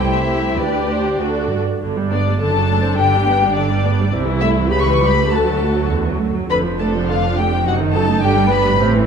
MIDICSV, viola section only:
0, 0, Header, 1, 2, 480
1, 0, Start_track
1, 0, Key_signature, 1, "major"
1, 0, Tempo, 617284
1, 453, Time_signature, 2, 2, 24, 8
1, 1414, Tempo, 576923
1, 3814, Tempo, 594648
1, 5734, Tempo, 573066
1, 7395, End_track
2, 0, Start_track
2, 0, Title_t, "Viola section"
2, 0, Program_c, 0, 48
2, 0, Note_on_c, 0, 57, 39
2, 0, Note_on_c, 0, 64, 39
2, 450, Note_off_c, 0, 64, 0
2, 457, Note_on_c, 0, 62, 35
2, 458, Note_off_c, 0, 57, 0
2, 461, Note_on_c, 0, 67, 38
2, 928, Note_off_c, 0, 62, 0
2, 937, Note_on_c, 0, 62, 36
2, 938, Note_on_c, 0, 66, 34
2, 939, Note_off_c, 0, 67, 0
2, 1246, Note_off_c, 0, 62, 0
2, 1252, Note_off_c, 0, 66, 0
2, 1416, Note_on_c, 0, 62, 41
2, 1417, Note_on_c, 0, 50, 38
2, 1530, Note_off_c, 0, 50, 0
2, 1542, Note_on_c, 0, 55, 35
2, 1658, Note_on_c, 0, 59, 32
2, 1662, Note_off_c, 0, 55, 0
2, 1780, Note_off_c, 0, 59, 0
2, 1787, Note_on_c, 0, 55, 35
2, 1904, Note_off_c, 0, 55, 0
2, 1904, Note_on_c, 0, 50, 37
2, 2014, Note_off_c, 0, 50, 0
2, 2021, Note_on_c, 0, 54, 35
2, 2140, Note_off_c, 0, 54, 0
2, 2143, Note_on_c, 0, 57, 36
2, 2260, Note_off_c, 0, 57, 0
2, 2263, Note_on_c, 0, 60, 35
2, 2380, Note_off_c, 0, 60, 0
2, 2389, Note_on_c, 0, 50, 43
2, 2495, Note_off_c, 0, 50, 0
2, 2510, Note_on_c, 0, 55, 40
2, 2623, Note_off_c, 0, 55, 0
2, 2630, Note_on_c, 0, 59, 41
2, 2744, Note_off_c, 0, 59, 0
2, 2753, Note_on_c, 0, 55, 42
2, 2865, Note_off_c, 0, 55, 0
2, 2873, Note_on_c, 0, 50, 43
2, 2984, Note_off_c, 0, 50, 0
2, 2989, Note_on_c, 0, 55, 41
2, 3101, Note_off_c, 0, 55, 0
2, 3108, Note_on_c, 0, 59, 43
2, 3220, Note_off_c, 0, 59, 0
2, 3224, Note_on_c, 0, 55, 42
2, 3301, Note_off_c, 0, 62, 0
2, 3338, Note_off_c, 0, 55, 0
2, 3346, Note_on_c, 0, 48, 49
2, 3348, Note_on_c, 0, 64, 47
2, 3451, Note_off_c, 0, 48, 0
2, 3458, Note_on_c, 0, 52, 45
2, 3575, Note_off_c, 0, 52, 0
2, 3578, Note_on_c, 0, 57, 42
2, 3696, Note_off_c, 0, 57, 0
2, 3701, Note_on_c, 0, 52, 43
2, 3812, Note_on_c, 0, 67, 45
2, 3813, Note_off_c, 0, 64, 0
2, 3814, Note_on_c, 0, 49, 45
2, 3818, Note_off_c, 0, 52, 0
2, 3925, Note_off_c, 0, 49, 0
2, 3927, Note_on_c, 0, 52, 41
2, 4050, Note_off_c, 0, 52, 0
2, 4056, Note_on_c, 0, 55, 40
2, 4164, Note_on_c, 0, 57, 38
2, 4174, Note_off_c, 0, 55, 0
2, 4287, Note_on_c, 0, 66, 40
2, 4288, Note_off_c, 0, 57, 0
2, 4290, Note_on_c, 0, 50, 41
2, 4291, Note_off_c, 0, 67, 0
2, 4403, Note_off_c, 0, 50, 0
2, 4410, Note_on_c, 0, 54, 37
2, 4528, Note_on_c, 0, 57, 37
2, 4533, Note_off_c, 0, 54, 0
2, 4654, Note_off_c, 0, 57, 0
2, 4657, Note_on_c, 0, 54, 38
2, 4779, Note_off_c, 0, 54, 0
2, 4780, Note_on_c, 0, 50, 38
2, 4902, Note_off_c, 0, 50, 0
2, 4907, Note_on_c, 0, 54, 35
2, 5026, Note_off_c, 0, 54, 0
2, 5031, Note_on_c, 0, 57, 35
2, 5096, Note_off_c, 0, 66, 0
2, 5146, Note_on_c, 0, 54, 36
2, 5147, Note_off_c, 0, 57, 0
2, 5264, Note_off_c, 0, 54, 0
2, 5266, Note_on_c, 0, 50, 41
2, 5266, Note_on_c, 0, 62, 40
2, 5374, Note_off_c, 0, 50, 0
2, 5380, Note_on_c, 0, 53, 39
2, 5499, Note_off_c, 0, 53, 0
2, 5502, Note_on_c, 0, 57, 36
2, 5619, Note_off_c, 0, 57, 0
2, 5620, Note_on_c, 0, 53, 40
2, 5736, Note_off_c, 0, 53, 0
2, 5742, Note_on_c, 0, 50, 41
2, 5860, Note_off_c, 0, 50, 0
2, 5864, Note_on_c, 0, 53, 37
2, 5979, Note_on_c, 0, 57, 39
2, 5981, Note_off_c, 0, 53, 0
2, 6098, Note_on_c, 0, 53, 41
2, 6099, Note_off_c, 0, 57, 0
2, 6186, Note_off_c, 0, 62, 0
2, 6218, Note_off_c, 0, 53, 0
2, 6222, Note_on_c, 0, 63, 43
2, 6224, Note_on_c, 0, 48, 46
2, 6333, Note_off_c, 0, 48, 0
2, 6339, Note_on_c, 0, 51, 41
2, 6458, Note_off_c, 0, 51, 0
2, 6460, Note_on_c, 0, 54, 42
2, 6578, Note_off_c, 0, 54, 0
2, 6579, Note_on_c, 0, 57, 45
2, 6696, Note_off_c, 0, 57, 0
2, 6697, Note_off_c, 0, 63, 0
2, 6697, Note_on_c, 0, 62, 47
2, 6700, Note_on_c, 0, 50, 47
2, 6807, Note_off_c, 0, 50, 0
2, 6809, Note_on_c, 0, 55, 45
2, 6923, Note_on_c, 0, 59, 51
2, 6929, Note_off_c, 0, 55, 0
2, 7046, Note_off_c, 0, 59, 0
2, 7046, Note_on_c, 0, 55, 48
2, 7163, Note_on_c, 0, 60, 54
2, 7166, Note_on_c, 0, 48, 57
2, 7168, Note_off_c, 0, 55, 0
2, 7171, Note_off_c, 0, 62, 0
2, 7281, Note_off_c, 0, 48, 0
2, 7285, Note_on_c, 0, 52, 53
2, 7395, Note_off_c, 0, 52, 0
2, 7395, Note_off_c, 0, 60, 0
2, 7395, End_track
0, 0, End_of_file